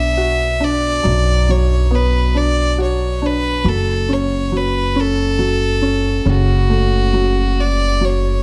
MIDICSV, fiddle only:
0, 0, Header, 1, 2, 480
1, 0, Start_track
1, 0, Key_signature, 2, "minor"
1, 0, Tempo, 869565
1, 575, Time_signature, 6, 3, 24, 8
1, 4653, End_track
2, 0, Start_track
2, 0, Title_t, "Fiddle"
2, 0, Program_c, 0, 110
2, 0, Note_on_c, 0, 76, 84
2, 353, Note_on_c, 0, 74, 86
2, 361, Note_off_c, 0, 76, 0
2, 830, Note_on_c, 0, 73, 77
2, 838, Note_off_c, 0, 74, 0
2, 1074, Note_on_c, 0, 71, 71
2, 1083, Note_off_c, 0, 73, 0
2, 1308, Note_on_c, 0, 74, 77
2, 1317, Note_off_c, 0, 71, 0
2, 1542, Note_off_c, 0, 74, 0
2, 1556, Note_on_c, 0, 73, 64
2, 1798, Note_on_c, 0, 71, 76
2, 1806, Note_off_c, 0, 73, 0
2, 2035, Note_on_c, 0, 69, 76
2, 2044, Note_off_c, 0, 71, 0
2, 2283, Note_on_c, 0, 73, 76
2, 2291, Note_off_c, 0, 69, 0
2, 2522, Note_on_c, 0, 71, 73
2, 2530, Note_off_c, 0, 73, 0
2, 2758, Note_on_c, 0, 69, 82
2, 2767, Note_off_c, 0, 71, 0
2, 3477, Note_on_c, 0, 66, 75
2, 3486, Note_off_c, 0, 69, 0
2, 4198, Note_on_c, 0, 74, 76
2, 4206, Note_off_c, 0, 66, 0
2, 4443, Note_on_c, 0, 73, 67
2, 4452, Note_off_c, 0, 74, 0
2, 4653, Note_off_c, 0, 73, 0
2, 4653, End_track
0, 0, End_of_file